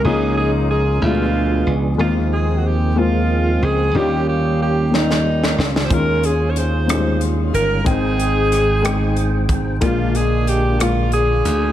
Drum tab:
HH |------------|------------|------------|x-x-x-x-x-x-|
SD |------------|------------|------oo-ooo|------r-----|
BD |------------|------------|------------|o-----------|

HH |x-x-x-x-x-x-|x-x-x-x-x-x-|
SD |----r-r-----|------r-----|
BD |o---------o-|o-----------|